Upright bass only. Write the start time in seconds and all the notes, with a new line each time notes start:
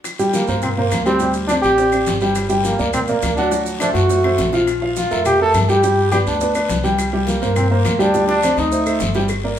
0.48 G2
0.92 D2
1.64 A1
2.07 G1
2.79 D2
3.23 D2
3.94 F#2
4.38 A#1
5.11 F2
5.54 G2
6.26 D2
6.70 C2
7.42 G2
7.84 D2
8.57 D2
9.01 G1